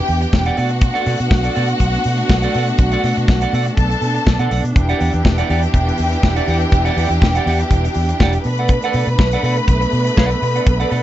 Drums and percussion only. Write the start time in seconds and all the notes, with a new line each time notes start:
0.08 open hi-hat
0.22 closed hi-hat
0.33 kick, snare
0.45 closed hi-hat
0.57 open hi-hat
0.71 closed hi-hat
0.81 kick, closed hi-hat
0.95 closed hi-hat
1.06 open hi-hat
1.20 closed hi-hat
1.31 kick, snare
1.44 closed hi-hat
1.56 open hi-hat
1.68 closed hi-hat
1.80 kick, closed hi-hat
1.94 closed hi-hat
2.04 open hi-hat
2.18 closed hi-hat
2.29 kick, snare
2.42 closed hi-hat
2.54 open hi-hat
2.67 closed hi-hat
2.78 kick, closed hi-hat
2.92 closed hi-hat
3.04 open hi-hat
3.17 closed hi-hat
3.28 kick, snare
3.41 closed hi-hat
3.54 open hi-hat
3.66 closed hi-hat
3.77 kick, closed hi-hat
3.92 closed hi-hat
4.02 open hi-hat
4.16 closed hi-hat
4.27 kick, snare
4.39 closed hi-hat
4.51 open hi-hat
4.65 closed hi-hat
4.76 kick, closed hi-hat
4.89 closed hi-hat
5.00 open hi-hat
5.14 closed hi-hat
5.25 kick, snare
5.38 closed hi-hat
5.50 open hi-hat
5.62 closed hi-hat
5.74 kick, closed hi-hat
5.88 closed hi-hat
5.98 open hi-hat
6.13 closed hi-hat
6.23 kick, snare
6.36 closed hi-hat
6.48 open hi-hat
6.62 closed hi-hat
6.72 kick, closed hi-hat
6.86 closed hi-hat
6.98 open hi-hat
7.11 closed hi-hat
7.22 kick, snare
7.35 closed hi-hat
7.47 open hi-hat
7.60 closed hi-hat
7.71 kick, closed hi-hat
7.85 closed hi-hat
7.94 open hi-hat
8.09 closed hi-hat
8.20 kick, snare
8.33 closed hi-hat
8.44 open hi-hat
8.58 closed hi-hat
8.68 kick, closed hi-hat
8.82 closed hi-hat
8.93 open hi-hat
9.08 closed hi-hat
9.19 kick, snare
9.32 closed hi-hat
9.44 open hi-hat
9.56 closed hi-hat
9.68 kick, closed hi-hat
9.82 closed hi-hat
9.92 open hi-hat
10.07 closed hi-hat
10.17 kick, snare
10.31 closed hi-hat
10.42 open hi-hat
10.56 closed hi-hat
10.67 kick, closed hi-hat
10.80 closed hi-hat
10.91 open hi-hat